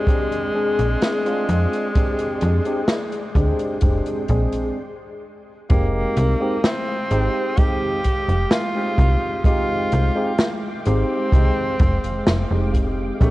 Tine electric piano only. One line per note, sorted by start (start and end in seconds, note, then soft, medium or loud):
0.07 0.49 G#3 medium
0.07 0.49 C4 medium
0.07 0.49 D4 medium
0.07 0.50 G4 medium
0.54 1.19 G#3 medium
0.54 1.20 C4 medium
0.54 1.20 D4 medium
0.54 1.20 G#4 medium
1.25 1.90 G#3 medium
1.25 1.90 C4 medium
1.25 1.90 D4 medium
1.25 1.90 F4 loud
1.95 2.60 G#3 medium
1.95 2.60 C4 medium
1.95 2.61 D4 medium
1.95 2.61 G4 medium
2.65 2.80 G#3 medium
2.65 2.81 C4 medium
2.65 2.81 D4 medium
2.65 2.81 G4 loud
3.35 3.77 G#3 loud
3.35 3.77 C4 medium
3.35 3.77 D4 medium
3.35 3.78 G4 loud
3.82 4.24 G#3 medium
3.82 4.24 C4 medium
3.82 4.24 D4 medium
3.82 4.25 G4 medium
4.29 4.76 G#3 medium
4.29 4.77 C4 medium
4.29 4.77 D4 medium
4.29 4.77 G#4 medium
5.70 6.35 G#3 medium
5.70 6.35 C4 medium
5.70 6.36 D#4 medium
5.70 6.36 G4 loud
6.40 6.55 G#3 medium
6.40 6.55 C4 medium
6.40 6.56 D#4 medium
6.40 6.56 G4 loud
7.10 7.52 G#3 medium
7.10 7.52 C4 medium
7.10 7.53 D#4 medium
7.10 7.53 G4 loud
7.57 7.99 G#3 medium
7.57 7.99 C4 medium
7.57 7.99 D#4 medium
7.57 8.00 G4 medium
8.75 9.40 G#3 medium
8.75 9.40 C4 medium
8.75 9.40 D#4 medium
8.75 9.40 G4 medium
9.45 10.10 G#3 medium
9.45 10.10 C4 medium
9.45 10.11 D#4 medium
9.45 10.11 G4 loud
10.15 10.30 G#3 loud
10.15 10.31 C4 medium
10.15 10.31 D#4 medium
10.15 10.31 G4 loud
10.85 11.27 G#3 loud
10.85 11.27 C4 medium
10.85 11.28 D#4 medium
10.85 11.28 G4 loud
11.32 11.74 G#3 medium
11.32 11.74 C4 medium
11.32 11.74 D#4 medium
11.32 11.75 G4 medium
12.50 13.15 G#3 medium
12.50 13.15 C4 medium
12.50 13.15 D#4 medium
12.50 13.16 G4 medium
13.20 13.31 G#3 medium
13.20 13.31 C4 medium
13.20 13.31 D4 medium
13.20 13.31 G4 loud